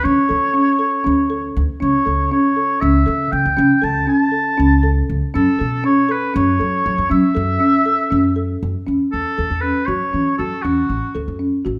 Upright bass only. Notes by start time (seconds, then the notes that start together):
0.05 D3
0.30 D2
1.06 D2
1.57 D2
1.82 C#2
2.07 C#2
2.82 C#2
3.07 C#3
3.33 C#3
3.45 C#2
3.58 C#3
3.83 C#2
4.59 C#2
5.10 C#2
5.35 F#2
5.61 B2
6.36 F#2
6.61 F#3
6.86 F#3
6.98 F#2
7.11 F#3
7.36 F#2
8.12 F#2
8.63 F#2
8.88 E2
9.14 E2
9.39 E2
9.50 E2
9.88 F#2
10.14 E3
10.39 F#2
10.65 E2
10.89 A1
11.15 D2
11.28 F#2
11.66 A1